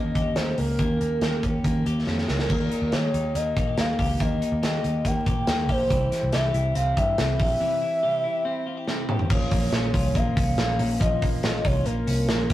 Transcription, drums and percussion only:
0.15 kick medium
0.15 closed hi-hat medium
0.36 snare loud
0.36 closed hi-hat medium
0.58 open hi-hat medium
0.79 kick medium
0.79 closed hi-hat medium
1.01 closed hi-hat medium
1.22 snare medium
1.22 closed hi-hat medium
1.43 kick medium
1.43 closed hi-hat medium
1.64 kick medium
1.64 closed hi-hat medium
1.86 closed hi-hat medium
2.07 snare medium
2.18 snare medium
2.28 snare medium
2.39 snare medium
2.50 kick loud
2.50 crash medium
2.72 closed hi-hat medium
2.92 snare medium
2.92 closed hi-hat medium
3.14 closed hi-hat medium
3.35 closed hi-hat medium
3.57 kick medium
3.57 closed hi-hat medium
3.77 snare loud
3.77 closed hi-hat medium
3.99 kick medium
3.99 open hi-hat medium
4.20 kick medium
4.20 closed hi-hat medium
4.42 closed hi-hat medium
4.63 snare loud
4.63 closed hi-hat medium
4.84 closed hi-hat medium
5.05 kick medium
5.05 closed hi-hat medium
5.26 kick medium
5.26 closed hi-hat medium
5.47 snare loud
5.47 closed hi-hat medium
5.69 kick medium
5.69 open hi-hat medium
5.90 kick loud
5.90 closed hi-hat medium
6.12 snare soft
6.12 closed hi-hat medium
6.33 snare medium
6.33 closed hi-hat medium
6.54 closed hi-hat medium
6.75 closed hi-hat medium
6.97 kick loud
6.97 closed hi-hat medium
7.18 snare loud
7.18 closed hi-hat medium
7.40 kick medium
7.40 open hi-hat medium
8.88 snare medium
9.09 mid tom medium
9.19 floor tom medium
9.30 kick loud
9.30 crash medium
9.51 kick medium
9.51 hi-hat pedal medium
9.51 open hi-hat medium
9.72 snare loud
9.72 hi-hat pedal medium
9.72 open hi-hat medium
9.94 kick medium
9.94 hi-hat pedal medium
9.94 open hi-hat medium
10.15 kick medium
10.15 hi-hat pedal medium
10.15 open hi-hat medium
10.37 kick medium
10.37 hi-hat pedal medium
10.37 open hi-hat medium
10.58 snare loud
10.58 hi-hat pedal medium
10.58 open hi-hat medium
10.79 hi-hat pedal medium
10.79 open hi-hat medium
11.01 kick loud
11.01 hi-hat pedal medium
11.01 open hi-hat medium
11.22 kick medium
11.22 hi-hat pedal medium
11.22 open hi-hat medium
11.43 snare loud
11.43 hi-hat pedal medium
11.43 open hi-hat medium
11.65 kick loud
11.65 hi-hat pedal medium
11.65 open hi-hat medium
11.86 hi-hat pedal medium
11.86 open hi-hat medium
12.07 hi-hat pedal medium
12.07 open hi-hat medium
12.29 snare loud
12.29 hi-hat pedal medium
12.29 open hi-hat medium
12.50 kick loud
12.50 hi-hat pedal medium
12.50 open hi-hat medium

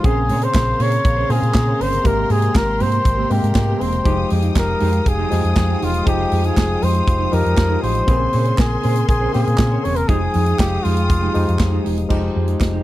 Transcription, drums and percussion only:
0.04 kick loud
0.04 closed hi-hat medium
0.29 open hi-hat medium
0.42 closed hi-hat soft
0.54 kick loud
0.54 snare loud
0.54 clap loud
0.54 closed hi-hat medium
0.80 open hi-hat medium
0.92 closed hi-hat medium
1.05 kick loud
1.05 closed hi-hat medium
1.30 snare soft
1.30 open hi-hat medium
1.43 closed hi-hat soft
1.54 kick loud
1.54 snare loud
1.54 clap loud
1.54 closed hi-hat medium
1.81 open hi-hat medium
1.93 closed hi-hat soft
2.05 kick loud
2.05 closed hi-hat medium
2.30 open hi-hat medium
2.42 closed hi-hat soft
2.55 kick loud
2.55 snare loud
2.55 clap loud
2.55 closed hi-hat medium
2.80 open hi-hat medium
2.92 closed hi-hat medium
3.05 kick loud
3.05 closed hi-hat medium
3.30 open hi-hat medium
3.44 closed hi-hat soft
3.55 kick loud
3.55 snare loud
3.55 clap medium
3.55 closed hi-hat medium
3.81 open hi-hat medium
3.92 closed hi-hat soft
4.05 kick loud
4.05 closed hi-hat medium
4.30 open hi-hat medium
4.42 closed hi-hat soft
4.55 kick loud
4.55 snare loud
4.55 clap loud
4.55 closed hi-hat medium
4.80 open hi-hat medium
4.93 closed hi-hat medium
5.06 kick loud
5.06 closed hi-hat medium
5.31 snare soft
5.31 open hi-hat medium
5.45 closed hi-hat soft
5.56 kick loud
5.56 snare loud
5.56 clap medium
5.56 closed hi-hat medium
5.82 open hi-hat medium
5.94 closed hi-hat soft
6.07 kick loud
6.07 closed hi-hat medium
6.32 open hi-hat medium
6.44 closed hi-hat soft
6.57 kick loud
6.57 snare loud
6.57 clap medium
6.57 closed hi-hat medium
6.82 open hi-hat medium
6.94 closed hi-hat soft
7.08 kick loud
7.08 closed hi-hat medium
7.33 open hi-hat medium
7.46 closed hi-hat soft
7.57 kick loud
7.57 snare loud
7.57 clap loud
7.57 closed hi-hat medium
7.83 open hi-hat medium
7.95 closed hi-hat soft
8.08 kick loud
8.08 closed hi-hat medium
8.33 open hi-hat medium
8.45 closed hi-hat soft
8.58 kick loud
8.58 snare loud
8.58 clap loud
8.58 closed hi-hat medium
8.83 open hi-hat medium
8.96 closed hi-hat medium
9.09 kick loud
9.09 closed hi-hat medium
9.34 snare soft
9.34 open hi-hat medium
9.47 closed hi-hat soft
9.57 kick loud
9.57 snare loud
9.57 clap loud
9.57 closed hi-hat medium
9.85 open hi-hat medium
9.96 closed hi-hat medium
10.09 kick loud
10.09 closed hi-hat medium
10.34 open hi-hat medium
10.46 closed hi-hat soft
10.59 kick loud
10.59 snare loud
10.59 clap loud
10.59 closed hi-hat medium
10.85 open hi-hat medium
10.97 closed hi-hat medium
11.10 kick loud
11.10 closed hi-hat medium
11.35 open hi-hat medium
11.49 closed hi-hat soft
11.59 kick loud
11.59 snare loud
11.59 clap loud
11.59 closed hi-hat medium
11.86 open hi-hat medium
11.97 closed hi-hat soft
12.10 kick loud
12.10 crash medium
12.48 closed hi-hat soft
12.61 kick loud
12.61 snare medium
12.61 clap medium
12.61 closed hi-hat medium

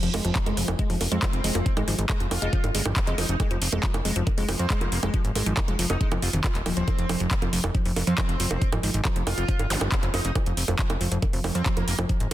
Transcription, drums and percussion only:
0.03 closed hi-hat medium
0.14 open hi-hat loud
0.14 high bongo medium
0.25 closed hi-hat medium
0.35 kick loud
0.35 clap loud
0.35 closed hi-hat medium
0.46 closed hi-hat medium
0.46 high bongo soft
0.57 open hi-hat loud
0.68 closed hi-hat medium
0.68 high bongo medium
0.79 kick loud
0.79 closed hi-hat medium
0.90 open hi-hat medium
1.01 open hi-hat loud
1.01 high bongo soft
1.12 closed hi-hat medium
1.22 kick loud
1.22 clap loud
1.22 closed hi-hat medium
1.22 high bongo medium
1.33 closed hi-hat medium
1.44 open hi-hat loud
1.55 closed hi-hat medium
1.55 high bongo soft
1.66 kick loud
1.66 closed hi-hat medium
1.77 closed hi-hat medium
1.77 high bongo medium
1.88 open hi-hat loud
1.99 closed hi-hat medium
2.09 kick loud
2.09 clap loud
2.09 closed hi-hat medium
2.09 high bongo soft
2.20 closed hi-hat medium
2.31 open hi-hat loud
2.31 high bongo medium
2.42 closed hi-hat medium
2.53 kick loud
2.53 closed hi-hat medium
2.64 closed hi-hat medium
2.64 high bongo soft
2.75 open hi-hat loud
2.86 closed hi-hat medium
2.86 high bongo medium
2.96 kick loud
2.96 clap loud
2.96 closed hi-hat medium
3.07 clap soft
3.07 closed hi-hat medium
3.18 open hi-hat loud
3.18 high bongo soft
3.29 closed hi-hat medium
3.40 kick loud
3.40 closed hi-hat medium
3.40 high bongo medium
3.51 closed hi-hat medium
3.62 open hi-hat loud
3.72 closed hi-hat medium
3.72 high bongo soft
3.83 kick loud
3.83 clap loud
3.83 closed hi-hat medium
3.94 closed hi-hat medium
3.94 high bongo medium
4.05 open hi-hat loud
4.16 closed hi-hat medium
4.27 kick loud
4.27 closed hi-hat medium
4.27 high bongo soft
4.38 open hi-hat medium
4.49 open hi-hat loud
4.49 high bongo medium
4.59 closed hi-hat medium
4.70 kick loud
4.70 clap loud
4.70 closed hi-hat medium
4.81 closed hi-hat medium
4.81 high bongo soft
4.92 open hi-hat loud
5.03 closed hi-hat medium
5.03 high bongo medium
5.14 kick loud
5.14 closed hi-hat medium
5.25 closed hi-hat medium
5.36 open hi-hat loud
5.36 high bongo soft
5.46 closed hi-hat medium
5.57 kick loud
5.57 clap loud
5.57 closed hi-hat medium
5.57 high bongo medium
5.68 closed hi-hat medium
5.79 open hi-hat loud
5.90 closed hi-hat medium
5.90 high bongo soft
6.01 kick loud
6.01 closed hi-hat medium
6.12 closed hi-hat medium
6.12 high bongo medium
6.22 open hi-hat loud
6.33 closed hi-hat medium
6.44 kick loud
6.44 clap loud
6.44 closed hi-hat medium
6.44 high bongo soft
6.55 clap soft
6.55 closed hi-hat medium
6.66 open hi-hat loud
6.66 high bongo medium
6.77 closed hi-hat medium
6.88 kick loud
6.88 closed hi-hat medium
6.88 high bongo soft
6.99 closed hi-hat medium
7.09 open hi-hat loud
7.09 high bongo medium
7.20 closed hi-hat medium
7.31 kick loud
7.31 clap loud
7.31 closed hi-hat medium
7.42 closed hi-hat medium
7.42 high bongo soft
7.53 open hi-hat loud
7.64 closed hi-hat medium
7.64 high bongo medium
7.75 kick loud
7.75 closed hi-hat medium
7.86 open hi-hat medium
7.96 open hi-hat loud
7.96 high bongo soft
8.07 closed hi-hat medium
8.18 kick loud
8.18 clap loud
8.18 closed hi-hat medium
8.18 high bongo medium
8.29 closed hi-hat medium
8.40 open hi-hat loud
8.51 closed hi-hat medium
8.51 high bongo soft
8.62 kick loud
8.62 closed hi-hat medium
8.72 closed hi-hat medium
8.72 high bongo medium
8.83 open hi-hat loud
8.94 closed hi-hat medium
9.05 kick loud
9.05 clap loud
9.05 closed hi-hat medium
9.05 high bongo soft
9.16 closed hi-hat medium
9.27 open hi-hat loud
9.27 high bongo medium
9.38 closed hi-hat medium
9.49 kick loud
9.49 closed hi-hat medium
9.59 closed hi-hat medium
9.59 high bongo soft
9.70 open hi-hat loud
9.81 closed hi-hat medium
9.81 high bongo medium
9.92 kick loud
9.92 clap loud
9.92 closed hi-hat medium
10.03 clap soft
10.03 closed hi-hat medium
10.14 open hi-hat loud
10.14 high bongo soft
10.25 closed hi-hat medium
10.35 kick loud
10.35 closed hi-hat medium
10.35 high bongo medium
10.46 closed hi-hat medium
10.57 open hi-hat medium
10.68 closed hi-hat medium
10.68 high bongo soft
10.79 kick loud
10.79 clap loud
10.79 closed hi-hat medium
10.90 closed hi-hat medium
10.90 high bongo medium
11.01 open hi-hat loud
11.12 closed hi-hat medium
11.22 kick loud
11.22 closed hi-hat medium
11.22 high bongo soft
11.33 open hi-hat medium
11.44 open hi-hat loud
11.44 high bongo medium
11.55 closed hi-hat medium
11.66 kick loud
11.66 clap loud
11.66 closed hi-hat medium
11.77 closed hi-hat medium
11.77 high bongo soft
11.88 open hi-hat loud
11.99 closed hi-hat medium
11.99 high bongo medium
12.09 kick loud
12.09 closed hi-hat medium
12.20 closed hi-hat medium

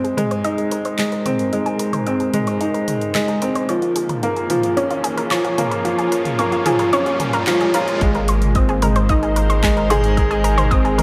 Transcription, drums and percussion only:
0.05 closed hi-hat soft
0.18 closed hi-hat medium
0.18 mid tom medium
0.31 closed hi-hat soft
0.44 closed hi-hat soft
0.58 closed hi-hat soft
0.71 closed hi-hat medium
0.85 closed hi-hat soft
0.99 clap medium
0.99 closed hi-hat soft
1.12 closed hi-hat soft
1.26 closed hi-hat medium
1.26 mid tom medium
1.39 closed hi-hat soft
1.53 closed hi-hat soft
1.66 closed hi-hat soft
1.79 closed hi-hat medium
1.93 closed hi-hat soft
1.93 mid tom medium
2.07 closed hi-hat soft
2.20 closed hi-hat soft
2.34 closed hi-hat medium
2.34 mid tom medium
2.47 closed hi-hat soft
2.61 closed hi-hat soft
2.74 closed hi-hat soft
2.88 closed hi-hat medium
2.88 mid tom medium
3.01 closed hi-hat soft
3.15 clap medium
3.15 closed hi-hat soft
3.28 closed hi-hat soft
3.42 closed hi-hat medium
3.55 closed hi-hat soft
3.69 closed hi-hat soft
3.82 closed hi-hat soft
3.96 closed hi-hat medium
4.09 closed hi-hat soft
4.09 mid tom medium
4.23 closed hi-hat soft
4.36 closed hi-hat soft
4.50 closed hi-hat medium
4.50 mid tom medium
4.63 closed hi-hat soft
4.77 closed hi-hat soft
4.91 closed hi-hat soft
5.04 closed hi-hat medium
5.18 closed hi-hat soft
5.31 clap medium
5.31 closed hi-hat soft
5.45 closed hi-hat soft
5.58 closed hi-hat medium
5.58 mid tom medium
5.72 closed hi-hat soft
5.85 closed hi-hat soft
5.99 closed hi-hat soft
6.12 closed hi-hat medium
6.25 closed hi-hat soft
6.25 mid tom medium
6.39 closed hi-hat soft
6.52 closed hi-hat soft
6.66 closed hi-hat medium
6.66 mid tom medium
6.79 closed hi-hat soft
6.93 closed hi-hat soft
7.06 closed hi-hat soft
7.20 closed hi-hat medium
7.20 mid tom medium
7.33 closed hi-hat soft
7.47 clap medium
7.47 closed hi-hat soft
7.61 closed hi-hat soft
7.74 closed hi-hat medium
7.88 closed hi-hat soft
8.01 kick loud
8.01 closed hi-hat soft
8.15 closed hi-hat soft
8.28 closed hi-hat medium
8.42 closed hi-hat soft
8.42 mid tom medium
8.55 kick loud
8.55 closed hi-hat soft
8.69 closed hi-hat soft
8.82 closed hi-hat medium
8.82 mid tom medium
8.96 closed hi-hat soft
9.09 kick loud
9.09 closed hi-hat soft
9.23 closed hi-hat soft
9.36 closed hi-hat medium
9.50 closed hi-hat soft
9.63 kick loud
9.63 clap medium
9.63 closed hi-hat soft
9.77 closed hi-hat soft
9.90 closed hi-hat medium
9.90 mid tom medium
10.04 closed hi-hat soft
10.17 kick loud
10.17 closed hi-hat soft
10.31 closed hi-hat soft
10.44 closed hi-hat medium
10.58 closed hi-hat soft
10.58 mid tom medium
10.71 kick loud
10.71 closed hi-hat soft
10.85 closed hi-hat soft
10.99 closed hi-hat medium
10.99 mid tom medium

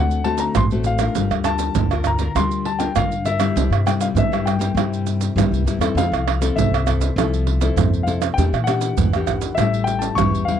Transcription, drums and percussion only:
0.11 pandeiro soft
0.11 maracas soft
0.24 pandeiro medium
0.38 pandeiro medium
0.38 maracas medium
0.55 pandeiro medium
0.55 tamborim medium
0.55 maracas medium
0.55 surdo loud
0.71 pandeiro soft
0.71 maracas soft
0.84 pandeiro medium
0.84 maracas medium
0.99 pandeiro medium
0.99 tamborim medium
0.99 maracas medium
1.15 pandeiro medium
1.15 maracas medium
1.15 surdo medium
1.31 pandeiro soft
1.31 tamborim medium
1.31 maracas soft
1.44 pandeiro medium
1.44 tamborim medium
1.44 maracas medium
1.59 pandeiro medium
1.59 maracas medium
1.75 pandeiro medium
1.75 maracas medium
1.75 surdo loud
1.91 pandeiro soft
1.91 tamborim medium
1.91 maracas soft
2.04 pandeiro medium
2.04 tamborim medium
2.04 maracas medium
2.04 surdo medium
2.19 pandeiro medium
2.19 maracas medium
2.36 pandeiro medium
2.36 tamborim medium
2.36 maracas medium
2.36 surdo medium
2.51 pandeiro soft
2.51 maracas soft
2.65 pandeiro medium
2.80 pandeiro medium
2.80 maracas medium
2.96 pandeiro medium
2.96 tamborim medium
2.96 maracas medium
2.96 surdo loud
3.12 pandeiro soft
3.12 maracas soft
3.25 pandeiro medium
3.25 maracas medium
3.40 pandeiro medium
3.40 tamborim medium
3.40 maracas medium
3.57 pandeiro medium
3.57 maracas medium
3.57 surdo medium
3.73 pandeiro soft
3.73 tamborim medium
3.73 maracas soft
3.87 pandeiro medium
3.87 tamborim medium
3.87 maracas medium
4.01 pandeiro medium
4.01 maracas medium
4.17 pandeiro medium
4.17 maracas medium
4.17 surdo loud
4.33 pandeiro soft
4.33 tamborim medium
4.33 maracas soft
4.47 pandeiro medium
4.47 tamborim medium
4.47 maracas medium
4.61 pandeiro medium
4.61 maracas medium
4.77 pandeiro medium
4.77 tamborim medium
4.77 maracas medium
4.77 surdo medium
4.94 pandeiro soft
4.94 maracas soft
5.07 pandeiro medium
5.07 maracas medium
5.21 pandeiro medium
5.21 maracas medium
5.38 pandeiro medium
5.38 tamborim medium
5.38 maracas medium
5.38 surdo loud
5.54 pandeiro soft
5.54 maracas soft
5.68 pandeiro medium
5.68 maracas medium
5.81 pandeiro medium
5.81 tamborim medium
5.81 maracas medium
5.98 pandeiro medium
5.98 maracas medium
5.98 surdo medium
6.14 pandeiro soft
6.14 tamborim medium
6.14 maracas soft
6.28 pandeiro medium
6.28 tamborim medium
6.42 pandeiro medium
6.42 maracas medium
6.58 pandeiro medium
6.58 maracas medium
6.58 surdo loud
6.74 pandeiro soft
6.74 tamborim medium
6.74 maracas soft
6.87 pandeiro medium
6.87 tamborim medium
6.87 maracas medium
6.87 surdo medium
7.01 pandeiro medium
7.01 maracas medium
7.18 pandeiro medium
7.18 tamborim medium
7.18 maracas medium
7.18 surdo medium
7.34 pandeiro soft
7.34 maracas soft
7.47 pandeiro medium
7.61 pandeiro medium
7.61 maracas medium
7.78 pandeiro medium
7.78 tamborim medium
7.78 maracas medium
7.78 surdo loud
7.94 pandeiro soft
7.94 maracas soft
8.08 pandeiro medium
8.08 maracas medium
8.22 pandeiro medium
8.22 tamborim medium
8.22 maracas medium
8.38 pandeiro medium
8.38 maracas medium
8.38 surdo medium
8.54 pandeiro soft
8.54 tamborim medium
8.54 maracas soft
8.67 pandeiro medium
8.67 tamborim medium
8.67 maracas medium
8.81 pandeiro medium
8.81 maracas medium
8.97 pandeiro medium
8.97 maracas medium
8.97 surdo loud
9.13 pandeiro soft
9.13 tamborim medium
9.13 maracas soft
9.27 pandeiro medium
9.27 tamborim medium
9.27 maracas medium
9.27 surdo medium
9.41 pandeiro medium
9.41 maracas medium
9.58 pandeiro medium
9.58 tamborim medium
9.58 maracas medium
9.58 surdo medium
9.74 pandeiro soft
9.74 maracas soft
9.87 pandeiro medium
9.87 maracas medium
10.02 pandeiro medium
10.02 maracas medium
10.18 pandeiro medium
10.18 tamborim medium
10.18 maracas medium
10.18 surdo loud
10.35 pandeiro soft
10.35 maracas soft
10.48 pandeiro medium

